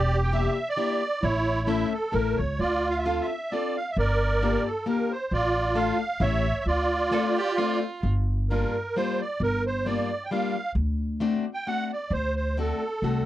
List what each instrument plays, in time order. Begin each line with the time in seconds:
Already playing: upright bass E1, accordion G4 D5
0.24 accordion G5
0.33 steel-string acoustic guitar A#3 D4 E4 G4, accordion E5
0.69 accordion D5
0.76 steel-string acoustic guitar A#3 D4 E4 G4
1.22 upright bass A1, accordion E4 C#5
1.67 steel-string acoustic guitar A3 C#4 E4 A4, accordion E5
1.93 accordion A4
2.12 upright bass A1, steel-string acoustic guitar A3 C#4 E4 A4, accordion A#4
2.37 upright bass C#2, accordion C#5
2.59 upright bass D2, accordion F4 D5
2.90 accordion F5
2.98 accordion E5
3.04 steel-string acoustic guitar C4 D4 F4 A4, accordion F5
3.21 accordion E5
3.51 steel-string acoustic guitar C4 D4 F4 A4, accordion D5
3.77 accordion F5
3.91 accordion E5
3.97 upright bass G1, accordion A#4 D5
4.42 steel-string acoustic guitar A#3 D4 F4 G4
4.67 accordion A4
4.86 steel-string acoustic guitar A#3 D4 F4 G4, accordion A#4
5.11 accordion C5
5.31 upright bass A1, accordion F4 D5
5.75 steel-string acoustic guitar A3 D4 F4 A4, accordion F5
6.20 upright bass A1, steel-string acoustic guitar A3 C#4 E4 G4, accordion C#5 E5
6.60 accordion E5
6.66 upright bass D2, accordion F4 D5
7.11 steel-string acoustic guitar A3 C4 D4 F4, violin A4
7.37 violin G4
7.58 steel-string acoustic guitar A3 C4 D4 F4, violin F4
8.03 upright bass G1
8.50 steel-string acoustic guitar G3 A#3 D4 F4, accordion A#4
8.96 steel-string acoustic guitar G3 A#3 D4 F4, accordion C5
9.21 accordion D5
9.40 upright bass G1, accordion A#4
9.67 accordion C5
9.86 steel-string acoustic guitar G3 A#3 D4 F4, accordion D5
10.24 accordion G5
10.31 steel-string acoustic guitar G3 A#3 D4 F4, accordion F5
10.75 upright bass D2
11.20 steel-string acoustic guitar A3 C4 D4 F#4
11.54 accordion G5
11.67 steel-string acoustic guitar A3 C4 D4 F#4, accordion F#5
11.93 accordion D5
12.10 upright bass D2, accordion C5
12.36 accordion C5
12.57 steel-string acoustic guitar A3 C4 D4 F#4, accordion A4
13.02 upright bass C2, steel-string acoustic guitar A3 C4 D4 F#4